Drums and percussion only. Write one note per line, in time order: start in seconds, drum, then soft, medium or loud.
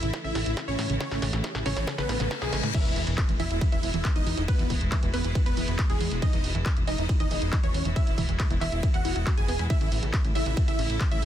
0.03 closed hi-hat medium
0.14 kick loud
0.14 snare medium
0.14 closed hi-hat medium
0.35 snare medium
0.35 open hi-hat loud
0.46 closed hi-hat medium
0.57 kick loud
0.57 snare medium
0.57 closed hi-hat medium
0.79 snare loud
0.79 open hi-hat loud
0.90 closed hi-hat medium
1.00 kick loud
1.00 snare medium
1.00 closed hi-hat medium
1.11 snare medium
1.22 snare loud
1.22 open hi-hat loud
1.33 snare medium
1.33 closed hi-hat medium
1.44 kick loud
1.44 snare loud
1.44 closed hi-hat medium
1.55 snare medium
1.66 snare loud
1.66 open hi-hat loud
1.77 snare medium
1.77 closed hi-hat medium
1.87 kick loud
1.87 snare loud
1.87 closed hi-hat medium
1.98 snare medium
2.09 snare loud
2.09 open hi-hat loud
2.20 snare loud
2.20 closed hi-hat medium
2.31 kick loud
2.31 snare loud
2.31 closed hi-hat medium
2.42 snare loud
2.53 snare loud
2.53 open hi-hat loud
2.64 snare medium
2.64 closed hi-hat medium
2.74 kick loud
2.74 closed hi-hat medium
2.74 crash loud
2.74 ride medium
2.85 closed hi-hat medium
2.96 open hi-hat loud
3.07 closed hi-hat medium
3.18 kick loud
3.18 clap loud
3.18 closed hi-hat medium
3.18 ride medium
3.29 closed hi-hat medium
3.40 open hi-hat loud
3.51 closed hi-hat medium
3.61 kick loud
3.61 closed hi-hat medium
3.61 ride medium
3.72 closed hi-hat medium
3.83 open hi-hat loud
3.94 closed hi-hat medium
4.05 kick loud
4.05 clap loud
4.05 closed hi-hat medium
4.05 ride medium
4.16 closed hi-hat medium
4.27 open hi-hat loud
4.37 closed hi-hat medium
4.48 kick loud
4.48 closed hi-hat medium
4.48 ride medium
4.59 closed hi-hat medium
4.70 kick medium
4.70 open hi-hat loud
4.81 closed hi-hat medium
4.92 kick loud
4.92 clap loud
4.92 closed hi-hat medium
4.92 ride medium
5.03 closed hi-hat medium
5.14 clap soft
5.14 open hi-hat loud
5.24 closed hi-hat medium
5.35 kick loud
5.35 closed hi-hat medium
5.35 ride medium
5.46 closed hi-hat medium
5.57 open hi-hat loud
5.68 closed hi-hat medium
5.79 kick loud
5.79 clap loud
5.79 closed hi-hat medium
5.79 ride medium
5.90 closed hi-hat medium
6.00 open hi-hat loud
6.11 closed hi-hat medium
6.22 kick loud
6.22 closed hi-hat medium
6.22 ride medium
6.33 closed hi-hat medium
6.44 open hi-hat loud
6.55 closed hi-hat medium
6.66 kick loud
6.66 clap loud
6.66 closed hi-hat medium
6.66 ride medium
6.77 closed hi-hat medium
6.87 open hi-hat loud
6.98 closed hi-hat medium
7.09 kick loud
7.09 closed hi-hat medium
7.09 ride medium
7.20 closed hi-hat medium
7.31 open hi-hat loud
7.42 closed hi-hat medium
7.53 kick loud
7.53 clap loud
7.53 closed hi-hat medium
7.53 ride medium
7.63 closed hi-hat medium
7.74 open hi-hat loud
7.85 closed hi-hat medium
7.96 kick loud
7.96 closed hi-hat medium
7.96 ride medium
8.07 closed hi-hat medium
8.18 kick medium
8.18 open hi-hat loud
8.29 closed hi-hat medium
8.40 kick loud
8.40 clap loud
8.40 closed hi-hat medium
8.40 ride medium
8.50 closed hi-hat medium
8.61 clap soft
8.61 open hi-hat loud
8.72 closed hi-hat medium
8.83 kick loud
8.83 closed hi-hat medium
8.83 ride medium
8.94 closed hi-hat medium
9.05 open hi-hat loud
9.16 closed hi-hat medium
9.27 kick loud
9.27 clap loud
9.27 closed hi-hat medium
9.27 ride medium
9.37 closed hi-hat medium
9.48 open hi-hat loud
9.59 closed hi-hat medium
9.70 kick loud
9.70 closed hi-hat medium
9.70 ride medium
9.81 closed hi-hat medium
9.92 open hi-hat loud
10.03 closed hi-hat medium
10.14 kick loud
10.14 clap loud
10.14 closed hi-hat medium
10.14 ride medium
10.24 closed hi-hat medium
10.35 open hi-hat loud
10.46 closed hi-hat medium
10.57 kick loud
10.57 closed hi-hat medium
10.57 ride medium
10.68 closed hi-hat medium
10.79 open hi-hat loud
10.90 closed hi-hat medium
11.01 kick loud
11.01 clap loud
11.01 closed hi-hat medium
11.01 ride medium
11.11 closed hi-hat medium